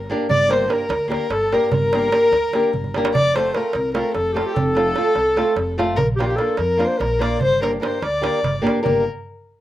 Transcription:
Already playing: upright bass G1, clarinet A#4
0.10 nylon-string guitar A#3 D4 G4 A#4
0.29 upright bass G1, clarinet D5, violin D5, darbuka dum
0.48 nylon-string guitar A#3 D4 G4 A#4, clarinet C5, darbuka tek
0.53 violin C5
0.61 darbuka tek
0.67 nylon-string guitar A#3 D4 G4 A#4, clarinet A#4, darbuka tek
0.73 violin A#4
0.80 darbuka tek
0.89 upright bass D2, darbuka tek
1.08 nylon-string guitar A#3 D4 G4 A#4, clarinet A#4, darbuka tek
1.13 violin A#4
1.30 upright bass G1, clarinet A4, violin A4, darbuka tek
1.52 nylon-string guitar A#3 D4 G4 A#4, clarinet A#4, violin A#4, darbuka tek
1.71 upright bass G1, clarinet A#4, violin A#4, darbuka dum
1.93 nylon-string guitar A#3 D4 G4 A#4, darbuka tek
2.03 darbuka tek
2.12 nylon-string guitar A#3 D4 G4 A#4, darbuka tek
2.31 upright bass D2, darbuka tek
2.53 nylon-string guitar A#3 D4 G4 A#4, darbuka tek
2.63 darbuka tek
2.73 upright bass G1, darbuka dum
2.84 darbuka dum
2.94 nylon-string guitar A#3 D4 G4 A#4, darbuka tek
3.05 darbuka tek
3.13 upright bass F1, clarinet D5, violin D5, darbuka dum
3.35 nylon-string guitar A3 C4 F4 A4, clarinet C5, violin C5, darbuka tek
3.45 darbuka tek
3.54 nylon-string guitar A3 C4 F4 A4, clarinet A#4, violin A#4, darbuka tek
3.64 darbuka tek
3.73 upright bass C2, darbuka tek
3.93 nylon-string guitar A3 C4 F4 A4, clarinet A#4, violin A#4, darbuka tek
4.14 upright bass F1, clarinet A4, violin A4, darbuka tek
4.32 nylon-string guitar A3 C4 F4 A4, clarinet G4
4.37 violin G4, clarinet A4, darbuka tek
4.42 violin A4
4.46 clarinet G4, violin G4
4.54 upright bass F1, clarinet A4, violin A4, darbuka dum
4.75 nylon-string guitar A3 C4 F4 A4, darbuka tek
4.86 darbuka tek
4.96 nylon-string guitar A3 C4 F4 A4, darbuka tek
5.07 darbuka tek
5.15 upright bass C2, darbuka tek
5.36 nylon-string guitar A3 C4 F4 A4, darbuka tek
5.56 upright bass F1, darbuka tek
5.78 nylon-string guitar A3 C4 F4 A4, darbuka tek
5.96 upright bass A#1, violin A#4, clarinet A#4, darbuka dum
6.16 nylon-string guitar A#3 D4 F4 A#4, clarinet G4, violin G4
6.20 clarinet F4, darbuka tek
6.25 violin F4, clarinet G4
6.30 violin G4, darbuka tek
6.36 nylon-string guitar A#3 D4 F4, clarinet A4, violin A4, darbuka tek
6.40 nylon-string guitar A#4
6.48 darbuka tek
6.57 upright bass F2, clarinet A#4, violin A#4, darbuka tek
6.77 nylon-string guitar A#3 D4 F4 A#4, darbuka tek
6.85 violin C5, clarinet C5
6.98 upright bass A#1, clarinet A#4, violin A#4, darbuka tek
7.19 nylon-string guitar A#3 D4 F4 A#4, clarinet D5, violin D5, darbuka tek
7.41 upright bass G1, clarinet C5, violin C5, darbuka dum
7.53 darbuka tek
7.60 nylon-string guitar A#3 D4 G4 A#4, violin A#4, clarinet A#4, darbuka tek
7.73 darbuka tek
7.80 nylon-string guitar A#3 D4 G4 A#4, violin C5, clarinet C5, darbuka tek
7.92 darbuka tek
8.02 upright bass D2, violin D5, clarinet D5, darbuka tek
8.13 darbuka tek
8.21 nylon-string guitar A#3 D4 G4 A#4, darbuka tek
8.34 darbuka tek
8.43 upright bass G1, darbuka tek, darbuka dum
8.55 darbuka tek
8.62 nylon-string guitar A#3 D4 G4 A#4
8.67 darbuka tek
8.83 upright bass G1, nylon-string guitar A#3 D4 G4 A#4, violin A#4, clarinet A#4, darbuka dum

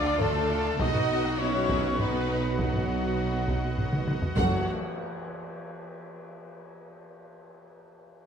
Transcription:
Already playing: tuba D2, double bass section D2, cello section D3, pipe organ A3 A4 D5 F5, trombone section D4, violin section F4 D5, french horn section D5, flute D6
0.05 viola section A3 D4, taiko rim
0.20 viola section F3 F4, trombone section A3, violin section D4 A4, french horn section A4, flute A5, taiko low-mid
0.35 viola section A3 D4
0.50 viola section F3 F4
0.65 viola section A3 D4
0.79 double bass section B1, tuba B1, cello section B2, viola section F#3 D#4, pipe organ B3 F#4 D#5 F#5, trombone section D#4, violin section F#4 D#5, french horn section D#5, flute D#6, taiko
0.95 viola section B3 F#4, taiko low-mid
1.10 viola section F#3 D#4
1.24 viola section B3 F#4, taiko rim
1.38 viola section F#3 D#4, trombone section C#4, violin section E4 C#5, french horn section C#5, flute C#6
1.53 viola section B3 F#4
1.69 viola section F#3 D#4, taiko
1.84 viola section B3 F#4
1.99 viola section F#3 D#4, trombone section B3, violin section D#4 B4, french horn section B4, flute B5, taiko low-mid
2.13 viola section B3 F#4
2.29 viola section F#3 D#4
2.44 viola section B3 F#4
2.58 viola section F#3 D#4, trombone section F#3, violin section B3 F#4, french horn section F#4, flute F#5, taiko
2.74 viola section B3 F#4, taiko low-mid
2.88 viola section F#3 D#4
3.03 viola section B3 F#4
3.18 viola section F#3 D#4
3.33 viola section B3 F#4
3.48 viola section F#3 D#4, taiko
3.64 viola section B3 F#4
3.77 viola section F#3 D#4, taiko low-mid
3.93 viola section B3 F#4, taiko mid
4.07 viola section F#3 D#4, taiko mid
4.22 viola section B3 F#4, taiko low
4.37 double bass section F#1, tuba F#1, cello section F#2, trombone section F#3, viola section A3 F#4, pipe organ A3 F#4 C#5 F#5, french horn section F#4, violin section F#5, flute F#5, taiko, tam-tam

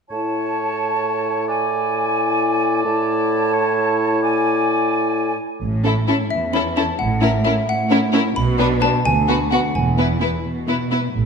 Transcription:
0.10 bassoon A2, clarinet E4, oboe C#5, flute section A5
1.48 oboe D5, flute section G#5
2.85 bassoon A2, clarinet E4, flute section A5
3.53 oboe C#5
4.22 oboe D5, flute section G#5
5.62 double bass section A1, cello section A2
5.84 viola section C#4, violin section E4 A4
6.08 viola section C#4, violin section E4 A4
6.30 cello section E2, xylophone E5
6.53 viola section C#4, violin section E4 A4, xylophone B5
6.77 viola section C#4, violin section E4 A4, xylophone A5
6.99 double bass section A1, cello section A2, xylophone F#5
7.21 viola section C#4, violin section E4 A#4, xylophone E5
7.45 viola section C#4, violin section E4 A#4, xylophone E5
7.69 cello section A2, xylophone F#5
7.90 viola section C#4, violin section E4 A#4
8.13 viola section C#4, violin section E4 A#4
8.36 double bass section B1, cello section B2, xylophone B5
8.58 viola section B3, violin section D4 B4
8.81 viola section B3, violin section D4 B4, xylophone A5
9.05 cello section D2, double bass section D2, xylophone G#5
9.28 viola section B3, violin section F#4 B4
9.51 viola section B3, violin section F#4 B4, xylophone F#5
9.75 double bass section E1, cello section E2, xylophone G#5
9.98 viola section B3, violin section E4 B4
10.20 viola section B3, violin section E4 B4
10.45 cello section B2
10.67 viola section B3, violin section E4 B4
10.91 viola section B3, violin section E4 B4
11.14 double bass section A1, cello section A2

